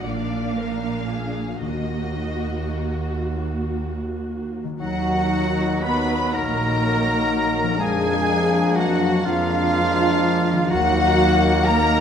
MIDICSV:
0, 0, Header, 1, 13, 480
1, 0, Start_track
1, 0, Key_signature, -6, "minor"
1, 0, Tempo, 1038062
1, 745, Time_signature, 6, 3, 24, 8
1, 745, Tempo, 1067616
1, 2185, Tempo, 1023891
1, 2665, Tempo, 986842
1, 3625, Tempo, 963082
1, 5715, End_track
2, 0, Start_track
2, 0, Title_t, "Flute"
2, 0, Program_c, 0, 73
2, 2184, Note_on_c, 0, 78, 70
2, 2658, Note_on_c, 0, 83, 67
2, 2665, Note_off_c, 0, 78, 0
2, 2903, Note_off_c, 0, 83, 0
2, 2906, Note_on_c, 0, 82, 66
2, 3620, Note_on_c, 0, 80, 76
2, 3627, Note_off_c, 0, 82, 0
2, 4098, Note_on_c, 0, 78, 74
2, 4105, Note_off_c, 0, 80, 0
2, 4350, Note_on_c, 0, 77, 83
2, 4357, Note_off_c, 0, 78, 0
2, 4906, Note_off_c, 0, 77, 0
2, 5064, Note_on_c, 0, 78, 93
2, 5545, Note_on_c, 0, 82, 81
2, 5552, Note_off_c, 0, 78, 0
2, 5715, Note_off_c, 0, 82, 0
2, 5715, End_track
3, 0, Start_track
3, 0, Title_t, "Violin section"
3, 0, Program_c, 1, 48
3, 21, Note_on_c, 1, 74, 53
3, 250, Note_off_c, 1, 74, 0
3, 259, Note_on_c, 1, 70, 47
3, 498, Note_off_c, 1, 70, 0
3, 499, Note_on_c, 1, 68, 43
3, 746, Note_off_c, 1, 68, 0
3, 750, Note_on_c, 1, 66, 46
3, 1813, Note_off_c, 1, 66, 0
3, 2186, Note_on_c, 1, 78, 68
3, 2646, Note_off_c, 1, 78, 0
3, 2666, Note_on_c, 1, 83, 72
3, 2907, Note_off_c, 1, 83, 0
3, 2907, Note_on_c, 1, 82, 65
3, 3624, Note_on_c, 1, 80, 77
3, 3625, Note_off_c, 1, 82, 0
3, 4096, Note_off_c, 1, 80, 0
3, 4102, Note_on_c, 1, 78, 68
3, 4347, Note_off_c, 1, 78, 0
3, 4351, Note_on_c, 1, 77, 81
3, 5066, Note_on_c, 1, 78, 93
3, 5070, Note_off_c, 1, 77, 0
3, 5534, Note_off_c, 1, 78, 0
3, 5542, Note_on_c, 1, 82, 88
3, 5715, Note_off_c, 1, 82, 0
3, 5715, End_track
4, 0, Start_track
4, 0, Title_t, "Violin section"
4, 0, Program_c, 2, 48
4, 36, Note_on_c, 2, 77, 66
4, 749, Note_on_c, 2, 75, 67
4, 751, Note_off_c, 2, 77, 0
4, 1456, Note_off_c, 2, 75, 0
4, 2184, Note_on_c, 2, 78, 84
4, 2645, Note_off_c, 2, 78, 0
4, 2665, Note_on_c, 2, 83, 67
4, 2907, Note_off_c, 2, 83, 0
4, 2909, Note_on_c, 2, 82, 78
4, 3625, Note_off_c, 2, 82, 0
4, 3628, Note_on_c, 2, 80, 99
4, 4107, Note_off_c, 2, 80, 0
4, 4110, Note_on_c, 2, 78, 77
4, 4346, Note_off_c, 2, 78, 0
4, 4349, Note_on_c, 2, 77, 97
4, 5069, Note_off_c, 2, 77, 0
4, 5069, Note_on_c, 2, 78, 109
4, 5535, Note_off_c, 2, 78, 0
4, 5540, Note_on_c, 2, 82, 96
4, 5715, Note_off_c, 2, 82, 0
4, 5715, End_track
5, 0, Start_track
5, 0, Title_t, "Oboe"
5, 0, Program_c, 3, 68
5, 2182, Note_on_c, 3, 66, 65
5, 2662, Note_on_c, 3, 71, 65
5, 2669, Note_off_c, 3, 66, 0
5, 2908, Note_on_c, 3, 70, 79
5, 2915, Note_off_c, 3, 71, 0
5, 3617, Note_off_c, 3, 70, 0
5, 3620, Note_on_c, 3, 68, 71
5, 4096, Note_on_c, 3, 66, 70
5, 4103, Note_off_c, 3, 68, 0
5, 4340, Note_on_c, 3, 65, 102
5, 4348, Note_off_c, 3, 66, 0
5, 5065, Note_off_c, 3, 65, 0
5, 5067, Note_on_c, 3, 66, 80
5, 5538, Note_on_c, 3, 70, 85
5, 5545, Note_off_c, 3, 66, 0
5, 5715, Note_off_c, 3, 70, 0
5, 5715, End_track
6, 0, Start_track
6, 0, Title_t, "Viola section"
6, 0, Program_c, 4, 48
6, 19, Note_on_c, 4, 58, 46
6, 20, Note_on_c, 4, 62, 45
6, 729, Note_off_c, 4, 62, 0
6, 735, Note_off_c, 4, 58, 0
6, 739, Note_on_c, 4, 66, 42
6, 740, Note_on_c, 4, 58, 40
6, 2062, Note_off_c, 4, 66, 0
6, 2063, Note_off_c, 4, 58, 0
6, 2182, Note_on_c, 4, 66, 61
6, 2644, Note_off_c, 4, 66, 0
6, 2665, Note_on_c, 4, 71, 68
6, 2901, Note_on_c, 4, 70, 64
6, 2907, Note_off_c, 4, 71, 0
6, 3621, Note_off_c, 4, 70, 0
6, 3623, Note_on_c, 4, 68, 72
6, 4102, Note_on_c, 4, 66, 81
6, 4105, Note_off_c, 4, 68, 0
6, 4342, Note_off_c, 4, 66, 0
6, 4346, Note_on_c, 4, 65, 77
6, 5063, Note_on_c, 4, 66, 86
6, 5068, Note_off_c, 4, 65, 0
6, 5542, Note_off_c, 4, 66, 0
6, 5545, Note_on_c, 4, 70, 84
6, 5715, Note_off_c, 4, 70, 0
6, 5715, End_track
7, 0, Start_track
7, 0, Title_t, "Clarinet"
7, 0, Program_c, 5, 71
7, 2183, Note_on_c, 5, 63, 49
7, 2886, Note_off_c, 5, 63, 0
7, 2909, Note_on_c, 5, 63, 61
7, 3611, Note_off_c, 5, 63, 0
7, 3624, Note_on_c, 5, 62, 56
7, 4334, Note_off_c, 5, 62, 0
7, 4347, Note_on_c, 5, 62, 70
7, 4979, Note_off_c, 5, 62, 0
7, 5064, Note_on_c, 5, 63, 66
7, 5715, Note_off_c, 5, 63, 0
7, 5715, End_track
8, 0, Start_track
8, 0, Title_t, "Harp"
8, 0, Program_c, 6, 46
8, 0, Note_on_c, 6, 58, 39
8, 0, Note_on_c, 6, 70, 43
8, 22, Note_on_c, 6, 46, 39
8, 253, Note_off_c, 6, 58, 0
8, 259, Note_on_c, 6, 58, 35
8, 494, Note_off_c, 6, 70, 0
8, 497, Note_on_c, 6, 62, 28
8, 501, Note_on_c, 6, 70, 31
8, 745, Note_on_c, 6, 51, 41
8, 764, Note_off_c, 6, 46, 0
8, 766, Note_off_c, 6, 62, 0
8, 990, Note_on_c, 6, 63, 31
8, 1229, Note_off_c, 6, 58, 0
8, 1235, Note_on_c, 6, 58, 36
8, 1471, Note_on_c, 6, 66, 33
8, 1708, Note_off_c, 6, 70, 0
8, 1714, Note_on_c, 6, 70, 32
8, 1947, Note_off_c, 6, 66, 0
8, 1953, Note_on_c, 6, 66, 34
8, 2101, Note_off_c, 6, 51, 0
8, 2107, Note_on_c, 6, 51, 49
8, 2122, Note_off_c, 6, 58, 0
8, 2127, Note_on_c, 6, 58, 42
8, 2141, Note_off_c, 6, 63, 0
8, 2146, Note_on_c, 6, 63, 42
8, 2162, Note_off_c, 6, 66, 0
8, 2167, Note_on_c, 6, 66, 44
8, 3538, Note_on_c, 6, 53, 56
8, 3554, Note_off_c, 6, 58, 0
8, 3554, Note_off_c, 6, 70, 0
8, 3560, Note_on_c, 6, 58, 45
8, 3581, Note_on_c, 6, 62, 48
8, 3601, Note_off_c, 6, 51, 0
8, 3602, Note_on_c, 6, 68, 49
8, 3623, Note_off_c, 6, 63, 0
8, 3634, Note_off_c, 6, 66, 0
8, 4978, Note_on_c, 6, 51, 62
8, 4995, Note_off_c, 6, 58, 0
8, 5001, Note_on_c, 6, 58, 51
8, 5024, Note_on_c, 6, 63, 49
8, 5043, Note_off_c, 6, 53, 0
8, 5044, Note_on_c, 6, 70, 57
8, 5066, Note_off_c, 6, 62, 0
8, 5076, Note_off_c, 6, 68, 0
8, 5715, Note_off_c, 6, 51, 0
8, 5715, Note_off_c, 6, 58, 0
8, 5715, Note_off_c, 6, 63, 0
8, 5715, Note_off_c, 6, 70, 0
8, 5715, End_track
9, 0, Start_track
9, 0, Title_t, "French horn section"
9, 0, Program_c, 7, 60
9, 2179, Note_on_c, 7, 63, 61
9, 2182, Note_on_c, 7, 58, 62
9, 2884, Note_off_c, 7, 63, 0
9, 2886, Note_off_c, 7, 58, 0
9, 2903, Note_on_c, 7, 63, 62
9, 2904, Note_on_c, 7, 58, 59
9, 3608, Note_off_c, 7, 63, 0
9, 3609, Note_off_c, 7, 58, 0
9, 3616, Note_on_c, 7, 62, 65
9, 3618, Note_on_c, 7, 58, 65
9, 4331, Note_off_c, 7, 58, 0
9, 4334, Note_off_c, 7, 62, 0
9, 4340, Note_on_c, 7, 62, 66
9, 4343, Note_on_c, 7, 58, 65
9, 5050, Note_off_c, 7, 62, 0
9, 5052, Note_off_c, 7, 58, 0
9, 5079, Note_on_c, 7, 58, 76
9, 5079, Note_on_c, 7, 63, 80
9, 5715, Note_off_c, 7, 58, 0
9, 5715, Note_off_c, 7, 63, 0
9, 5715, End_track
10, 0, Start_track
10, 0, Title_t, "Bassoon"
10, 0, Program_c, 8, 70
10, 2179, Note_on_c, 8, 54, 56
10, 2884, Note_off_c, 8, 54, 0
10, 2905, Note_on_c, 8, 54, 55
10, 3618, Note_on_c, 8, 58, 60
10, 3625, Note_off_c, 8, 54, 0
10, 4342, Note_off_c, 8, 58, 0
10, 4345, Note_on_c, 8, 58, 59
10, 5052, Note_off_c, 8, 58, 0
10, 5063, Note_on_c, 8, 58, 74
10, 5715, Note_off_c, 8, 58, 0
10, 5715, End_track
11, 0, Start_track
11, 0, Title_t, "Cello section"
11, 0, Program_c, 10, 48
11, 23, Note_on_c, 10, 46, 48
11, 730, Note_off_c, 10, 46, 0
11, 744, Note_on_c, 10, 39, 41
11, 2083, Note_off_c, 10, 39, 0
11, 2181, Note_on_c, 10, 54, 65
11, 2644, Note_off_c, 10, 54, 0
11, 2664, Note_on_c, 10, 59, 61
11, 2905, Note_on_c, 10, 58, 66
11, 2906, Note_off_c, 10, 59, 0
11, 3623, Note_off_c, 10, 58, 0
11, 3623, Note_on_c, 10, 56, 65
11, 4095, Note_off_c, 10, 56, 0
11, 4103, Note_on_c, 10, 54, 74
11, 4348, Note_off_c, 10, 54, 0
11, 4349, Note_on_c, 10, 53, 82
11, 5054, Note_off_c, 10, 53, 0
11, 5068, Note_on_c, 10, 54, 83
11, 5543, Note_on_c, 10, 58, 85
11, 5544, Note_off_c, 10, 54, 0
11, 5715, Note_off_c, 10, 58, 0
11, 5715, End_track
12, 0, Start_track
12, 0, Title_t, "Trombone section"
12, 0, Program_c, 11, 61
12, 2177, Note_on_c, 11, 51, 59
12, 2178, Note_on_c, 11, 54, 54
12, 2883, Note_off_c, 11, 51, 0
12, 2884, Note_off_c, 11, 54, 0
12, 2895, Note_on_c, 11, 54, 58
12, 2899, Note_on_c, 11, 51, 62
12, 3604, Note_off_c, 11, 54, 0
12, 3606, Note_off_c, 11, 51, 0
12, 3619, Note_on_c, 11, 56, 65
12, 3621, Note_on_c, 11, 53, 63
12, 4332, Note_off_c, 11, 56, 0
12, 4333, Note_off_c, 11, 53, 0
12, 4342, Note_on_c, 11, 53, 69
12, 4342, Note_on_c, 11, 56, 69
12, 5051, Note_off_c, 11, 53, 0
12, 5051, Note_off_c, 11, 56, 0
12, 5058, Note_on_c, 11, 51, 76
12, 5060, Note_on_c, 11, 54, 66
12, 5715, Note_off_c, 11, 51, 0
12, 5715, Note_off_c, 11, 54, 0
12, 5715, End_track
13, 0, Start_track
13, 0, Title_t, "Double bass section"
13, 0, Program_c, 12, 48
13, 23, Note_on_c, 12, 34, 46
13, 730, Note_off_c, 12, 34, 0
13, 746, Note_on_c, 12, 39, 50
13, 2084, Note_off_c, 12, 39, 0
13, 2181, Note_on_c, 12, 39, 71
13, 2784, Note_off_c, 12, 39, 0
13, 2903, Note_on_c, 12, 34, 58
13, 3505, Note_off_c, 12, 34, 0
13, 3622, Note_on_c, 12, 41, 77
13, 4226, Note_off_c, 12, 41, 0
13, 4345, Note_on_c, 12, 41, 80
13, 4948, Note_off_c, 12, 41, 0
13, 5065, Note_on_c, 12, 39, 90
13, 5663, Note_off_c, 12, 39, 0
13, 5715, End_track
0, 0, End_of_file